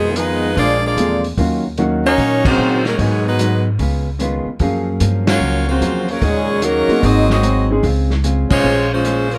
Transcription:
Already playing: upright bass F2, trombone section B2 D#3 G#3, saxophone section F3 B3 D#4 G#4
0.14 trombone section D#3 G#3 B3, hollow-body jazz guitar F3 B3, saxophone section G#3 D#4 F4 B4, closed hi-hat
0.19 hollow-body jazz guitar D#4 G#4
0.55 upright bass A#1, hollow-body jazz guitar A#2, trombone section F3 G#3 D4, saxophone section A#3 F4 G#4 D5, kick, open hi-hat
0.59 hollow-body jazz guitar F3 G#3 D4
0.82 trombone section F3 G#3 D4, saxophone section A#3 F4 G#4 D5
0.96 upright bass E2, hollow-body jazz guitar A#2 F3 G#3 D4, grand piano D3 G#3 A#3 C4 F4, closed hi-hat
1.24 open hi-hat
1.38 upright bass D#2, hollow-body jazz guitar D#3 A#3 C#4 F#4, grand piano D#3 F#3 A#3 C#4 F4, kick, open hi-hat
1.78 hollow-body jazz guitar D#3 A#3 C#4 F#4, grand piano D#3 F#3 A#3 C#4 F#4, closed hi-hat
2.05 trombone section F#3 A#3 C#4, saxophone section A#3 D#4 F#4 C#5
2.17 upright bass A#2, hollow-body jazz guitar D#3 A#3 C#4 F#4, kick, open hi-hat
2.45 trombone section C#3 F#3 C4, saxophone section A#3 D#4 F#4 C5, kick, crash
2.58 upright bass A#2, hollow-body jazz guitar D#3 A#3 C#4 F#4
2.85 trombone section C#3 F#3 A#3, saxophone section F#3 C#4 D#4 A#4, snare, open hi-hat
2.98 hollow-body jazz guitar G#2 F#3 B3 D#4, upright bass G#2, trombone section B2 D#3 G#3, saxophone section F#3 B3 D#4 G#4, kick, open hi-hat
3.26 trombone section D#3 F#3 B3, saxophone section G#3 D#4 F#4 B4
3.39 hollow-body jazz guitar G#2 F#3 B3 D#4, closed hi-hat
3.79 upright bass C#2, hollow-body jazz guitar C#3 G#3 B3 F4, kick, open hi-hat
4.19 hollow-body jazz guitar C#3 G#3 B3 F4, grand piano D#3 G#3 B3 C#4 F4, closed hi-hat
4.46 muted upright bass stroke
4.59 upright bass F#2, hollow-body jazz guitar F#2 F3 A#3 C#4, grand piano F#3 A#3 C#4 G#4 F5, kick, open hi-hat
5.00 hollow-body jazz guitar F#2 F3 A#3 C#4, upright bass G2, closed hi-hat
5.27 trombone section F#3 A#3 C#4, saxophone section A#3 F4 F#4 C#5, snare, ride
5.40 upright bass C#2, hollow-body jazz guitar F#2 F3 A#3 C#4
5.68 trombone section C#3 F#3 C4, saxophone section A#3 F4 F#4 C5
5.80 upright bass E2, hollow-body jazz guitar F#2 F3 A#3 C#4, closed hi-hat
6.08 trombone section C#3 F3 A#3, saxophone section F#3 C#4 F4 A#4, open hi-hat
6.21 upright bass D#2, trombone section A#2 C#3 G#3, hollow-body jazz guitar D#3 A#3 C#4 F#4, saxophone section F#3 C#4 D#4 G#4, kick, open hi-hat
6.62 trombone section C#3 F#3 A#3, hollow-body jazz guitar D#3 A#3 C#4 F#4, saxophone section F#3 C#4 D#4 A#4, closed hi-hat
6.88 grand piano G#3 A#3 C4 D#4 F#4, muted upright bass stroke, open hi-hat
7.02 upright bass G#1, hollow-body jazz guitar G#2 F#3 C4, trombone section F#3 C4 D#4, saxophone section C4 F#4 G#4 D#5, kick, open hi-hat
7.06 hollow-body jazz guitar D#4
7.30 trombone section F#3 C4 D#4, saxophone section C4 F#4 G#4 D#5, snare
7.43 hollow-body jazz guitar G#2 F#3 C4 D#4, closed hi-hat
7.70 grand piano G#3 C4 C#4 D#4 G#4
7.83 upright bass C#2, hollow-body jazz guitar C#3 G#3 C4 F4, kick, open hi-hat
8.10 snare
8.24 hollow-body jazz guitar C#3 G#3 C4 F4, closed hi-hat
8.50 upright bass B1, trombone section F3 G#3 C#4, saxophone section G#3 F4 C5 C#5, kick, crash
8.63 upright bass A#1, hollow-body jazz guitar A#3 C#4 G#4 C5
8.90 trombone section F3 G#3 C#4, saxophone section G#3 C#4 F4 C5
9.05 hollow-body jazz guitar A#3 C#4 G#4 C5, closed hi-hat
9.31 trombone section C#3 F3 A#3, saxophone section G#3 C#4 F4 A#4, open hi-hat

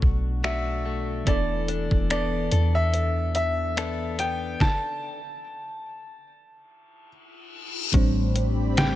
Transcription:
Already playing: fm electric piano B2 B3 D4 A4, clean electric guitar B2 A3 D4 F#4, downlifter
0.02 808-style bass B1, kick
0.44 clean electric guitar A3 D4 F#4, grand piano E5, finger snap
0.86 clean electric guitar A3
1.25 808-style bass E1, fm electric piano E3 B3 D4, clean electric guitar E3 A4, grand piano D5, kick, closed hi-hat
1.30 fm electric piano A4
1.68 clean electric guitar D4, closed hi-hat
1.91 808-style bass E1, kick
2.10 clean electric guitar B3 D4 A4, grand piano D5, finger snap, closed hi-hat
2.51 808-style bass E2, clean electric guitar A4, closed hi-hat
2.75 grand piano E5
2.94 closed hi-hat
3.35 grand piano E5, closed hi-hat
3.77 clean electric guitar B3 D4 A4, finger snap, closed hi-hat
4.19 clean electric guitar B3, grand piano G5, closed hi-hat
4.60 grand piano A5, kick, snare
6.27 reverse cymbal
7.92 808-style bass A1, fm electric piano A2 G3 C4 D4, clean electric guitar A2, analog synth pad C4 G4 D5 B5, kick, closed hi-hat
7.97 fm electric piano C5
8.36 closed hi-hat
8.77 clean electric guitar G3, grand piano G5, snare, closed hi-hat

